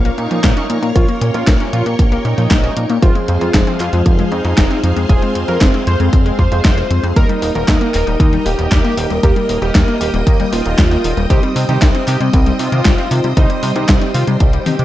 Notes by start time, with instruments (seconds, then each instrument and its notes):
Already playing: analog synth bass A#1, grand piano A#3 C#4 F4 C#5, string machine A#4 C#5 F5 C#6
0.05 synth arpeggio sound A#3, analog synth lead A#3, closed hi-hat
0.18 analog synth bass A#2, synth arpeggio sound C#4, analog synth lead D#4, closed hi-hat
0.31 analog synth bass A#2, synth arpeggio sound F3, closed hi-hat
0.44 analog synth bass A#1, synth arpeggio sound A#3, kick, snare, clap, closed hi-hat
0.57 synth arpeggio sound C#4, closed hi-hat
0.70 analog synth bass A#2, synth arpeggio sound F3, closed hi-hat
0.82 analog synth bass A#2, synth arpeggio sound A#3, closed hi-hat
0.95 analog synth bass A#1, synth arpeggio sound F3, grand piano A#3 C#4 F4 C#5, analog synth lead F4, string machine G5, kick, closed hi-hat
1.09 synth arpeggio sound A#3, analog synth lead A#3, closed hi-hat
1.21 analog synth bass A#2, analog synth lead A#3, synth arpeggio sound C#4, closed hi-hat
1.34 analog synth bass A#2, synth arpeggio sound F3, grand piano A#3 C#4 F4 C#5, analog synth lead F4, closed hi-hat
1.47 analog synth bass A#1, analog synth lead A#3, synth arpeggio sound A#3, kick, snare, clap, closed hi-hat
1.60 analog synth lead A#3, synth arpeggio sound C#4, closed hi-hat
1.73 analog synth bass A#2, synth arpeggio sound F3, analog synth lead F4, closed hi-hat
1.86 analog synth bass A#2, analog synth lead A#3, synth arpeggio sound A#3, closed hi-hat
1.99 analog synth bass A#1, synth arpeggio sound F3, analog synth lead A#3, kick, closed hi-hat
2.12 analog synth lead A#3, synth arpeggio sound A#3, closed hi-hat
2.25 analog synth bass A#2, synth arpeggio sound C#4, analog synth lead D#4, closed hi-hat
2.38 analog synth bass A#2, synth arpeggio sound F3, closed hi-hat
2.51 analog synth bass A#1, synth arpeggio sound A#3, kick, snare, clap, closed hi-hat
2.64 synth arpeggio sound C#4, closed hi-hat
2.77 analog synth bass A#2, synth arpeggio sound F3, closed hi-hat
2.90 analog synth bass A#2, synth arpeggio sound A#3, closed hi-hat
3.02 analog synth bass F1, synth arpeggio sound F3, grand piano G#3 C4 F4 C5, analog synth lead F4, string machine G#4 C5 F5 C6, kick, closed hi-hat
3.15 analog synth lead F3, synth arpeggio sound G#3, closed hi-hat
3.28 analog synth bass F2, analog synth lead F3, synth arpeggio sound C4, closed hi-hat
3.41 analog synth bass F2, synth arpeggio sound F3, grand piano G#3 C4 F4 C5, analog synth lead F4, closed hi-hat
3.54 analog synth bass F1, analog synth lead F3, synth arpeggio sound G#3, kick, snare, clap, closed hi-hat
3.67 analog synth lead F3, synth arpeggio sound C4, closed hi-hat
3.80 analog synth bass F2, synth arpeggio sound F3, analog synth lead F4, clap, closed hi-hat
3.93 analog synth bass F2, analog synth lead F3, synth arpeggio sound G#3, closed hi-hat
4.06 analog synth bass F1, analog synth lead F3, synth arpeggio sound F3, kick, closed hi-hat
4.19 analog synth lead F3, synth arpeggio sound G#3, closed hi-hat
4.32 analog synth bass F2, synth arpeggio sound C4, analog synth lead D#4, closed hi-hat
4.45 analog synth bass F2, synth arpeggio sound F3, closed hi-hat
4.58 analog synth bass F1, synth arpeggio sound G#3, kick, snare, clap, closed hi-hat
4.71 synth arpeggio sound C4, closed hi-hat
4.83 analog synth bass F2, synth arpeggio sound F3, closed hi-hat
4.96 analog synth bass F2, synth arpeggio sound G#3, closed hi-hat
5.09 analog synth bass F1, synth arpeggio sound F3, grand piano G#3 C4 F4 C5, analog synth lead G#4, kick, closed hi-hat
5.22 synth arpeggio sound G#3, analog synth lead C4, closed hi-hat
5.35 analog synth bass F2, synth arpeggio sound C4, analog synth lead C4, closed hi-hat
5.48 analog synth bass F2, synth arpeggio sound F3, grand piano G#3 C4 F4 C5, analog synth lead A#4, closed hi-hat
5.61 analog synth bass F1, synth arpeggio sound G#3, analog synth lead C4, kick, snare, clap, closed hi-hat
5.74 synth arpeggio sound C4, analog synth lead C4, closed hi-hat
5.87 analog synth bass F2, synth arpeggio sound F3, analog synth lead C5, closed hi-hat
6.00 analog synth bass F2, synth arpeggio sound G#3, analog synth lead C4, closed hi-hat
6.13 analog synth bass F1, synth arpeggio sound F3, analog synth lead C4, kick, closed hi-hat
6.26 synth arpeggio sound G#3, analog synth lead C4, closed hi-hat
6.39 analog synth bass F2, synth arpeggio sound F4, analog synth lead C5, kick, closed hi-hat
6.52 analog synth bass F2, grand piano G#3 C4 F4 C5, synth arpeggio sound C4, closed hi-hat
6.65 analog synth bass F1, synth arpeggio sound G#3, kick, snare, clap, closed hi-hat
6.78 synth arpeggio sound C5, closed hi-hat
6.90 analog synth bass F2, synth arpeggio sound C4, closed hi-hat
7.03 analog synth bass F2, synth arpeggio sound C4, closed hi-hat
7.16 analog synth bass D#2, synth arpeggio sound D#3, grand piano G3 A#3 D#4 A#4, string machine A#4 D#5 G5 D#6, analog synth lead A#4, kick, closed hi-hat
7.29 synth arpeggio sound G3, analog synth lead D#4, closed hi-hat
7.42 analog synth bass D#1, synth arpeggio sound A#3, analog synth lead D#4, open hi-hat
7.55 analog synth bass D#1, synth arpeggio sound D#3, grand piano G3 A#3 D#4 A#4, analog synth lead A#4, closed hi-hat
7.68 analog synth bass D#2, synth arpeggio sound G3, analog synth lead D#4, kick, snare, clap, closed hi-hat
7.81 synth arpeggio sound A#3, analog synth lead D#4, closed hi-hat
7.94 analog synth bass D#1, synth arpeggio sound D#3, analog synth lead A#4, clap, open hi-hat
8.07 analog synth bass D#1, synth arpeggio sound G3, analog synth lead D#4, closed hi-hat
8.20 analog synth bass D#2, synth arpeggio sound D#3, analog synth lead D#4, kick, closed hi-hat
8.33 synth arpeggio sound G3, analog synth lead D#4, closed hi-hat
8.46 analog synth bass D#1, synth arpeggio sound A#3, analog synth lead G4, open hi-hat
8.58 analog synth bass D#1, synth arpeggio sound D#3, closed hi-hat
8.71 analog synth bass D#2, synth arpeggio sound G3, kick, snare, clap, closed hi-hat
8.84 synth arpeggio sound A#3, closed hi-hat
8.97 analog synth bass D#1, synth arpeggio sound D#3, open hi-hat
9.10 analog synth bass D#1, synth arpeggio sound G3, closed hi-hat
9.23 analog synth bass D#2, synth arpeggio sound D#3, grand piano G3 A#3 D#4 A#4, analog synth lead G4, kick, closed hi-hat
9.36 synth arpeggio sound G3, analog synth lead A#3, closed hi-hat
9.49 analog synth bass D#1, synth arpeggio sound A#3, analog synth lead A#3, open hi-hat
9.62 analog synth bass D#1, synth arpeggio sound D#3, grand piano G3 A#3 D#4 A#4, analog synth lead G4, closed hi-hat
9.75 analog synth bass D#2, synth arpeggio sound G3, analog synth lead A#3, kick, snare, clap, closed hi-hat
9.88 synth arpeggio sound A#3, analog synth lead A#3, closed hi-hat
10.01 analog synth bass D#1, synth arpeggio sound D#3, analog synth lead G4, open hi-hat
10.14 analog synth bass D#1, synth arpeggio sound G3, analog synth lead A#3, closed hi-hat
10.27 analog synth bass D#2, synth arpeggio sound D#3, analog synth lead A#3, kick, closed hi-hat
10.40 synth arpeggio sound G3, analog synth lead A#3, closed hi-hat
10.52 analog synth bass D#1, synth arpeggio sound A#3, analog synth lead F4, open hi-hat
10.65 analog synth bass D#1, synth arpeggio sound D#3, closed hi-hat
10.78 analog synth bass D#2, synth arpeggio sound G3, kick, snare, clap, closed hi-hat
10.91 synth arpeggio sound A#3, closed hi-hat
11.04 analog synth bass D#1, synth arpeggio sound D#3, open hi-hat
11.17 analog synth bass D#1, synth arpeggio sound G3, closed hi-hat
11.30 analog synth bass C2, synth arpeggio sound D#3, grand piano G3 C4 D#4 C5, analog synth lead G4, string machine C5, kick, closed hi-hat
11.43 synth arpeggio sound G3, analog synth lead C4, closed hi-hat
11.56 analog synth bass C3, analog synth lead C4, synth arpeggio sound C4, open hi-hat
11.69 analog synth bass C3, synth arpeggio sound D#3, grand piano G3 C4 D#4 C5, analog synth lead G4, closed hi-hat
11.82 analog synth bass C2, synth arpeggio sound G3, analog synth lead C4, kick, snare, clap, closed hi-hat
11.95 analog synth lead C4, synth arpeggio sound C4, closed hi-hat
12.07 analog synth bass C3, synth arpeggio sound D#3, analog synth lead G4, clap, open hi-hat
12.20 analog synth bass C3, synth arpeggio sound G3, analog synth lead C4, closed hi-hat
12.33 analog synth bass C2, synth arpeggio sound D#3, analog synth lead C4, kick, closed hi-hat
12.46 synth arpeggio sound G3, analog synth lead C4, closed hi-hat
12.59 analog synth bass C3, synth arpeggio sound C4, analog synth lead F4, open hi-hat
12.72 analog synth bass C3, synth arpeggio sound D#3, closed hi-hat
12.85 analog synth bass C2, synth arpeggio sound G3, kick, snare, clap, closed hi-hat
12.98 synth arpeggio sound C4, closed hi-hat
13.11 analog synth bass C3, synth arpeggio sound D#3, open hi-hat
13.24 analog synth bass C3, synth arpeggio sound G3, closed hi-hat
13.37 analog synth bass C2, synth arpeggio sound D#3, grand piano G3 C4 D#4 C5, analog synth lead D#4, kick, closed hi-hat
13.50 analog synth lead G3, synth arpeggio sound G3, closed hi-hat
13.63 analog synth bass C3, analog synth lead G3, synth arpeggio sound C4, open hi-hat
13.76 analog synth bass C3, synth arpeggio sound D#3, grand piano G3 C4 D#4 C5, analog synth lead D#4, closed hi-hat
13.89 analog synth bass C2, analog synth lead G3, synth arpeggio sound G3, kick, snare, clap, closed hi-hat
14.01 analog synth lead G3, synth arpeggio sound C4, closed hi-hat
14.14 analog synth bass C3, synth arpeggio sound D#3, analog synth lead F4, open hi-hat
14.27 analog synth bass C3, analog synth lead G3, synth arpeggio sound G3, closed hi-hat
14.40 analog synth bass C2, synth arpeggio sound D#3, analog synth lead G3, kick, closed hi-hat
14.53 synth arpeggio sound G3, analog synth lead G3, closed hi-hat
14.66 analog synth bass C3, analog synth lead G4, synth arpeggio sound D#5, open hi-hat, high tom
14.79 analog synth bass C3, synth arpeggio sound D#3, closed hi-hat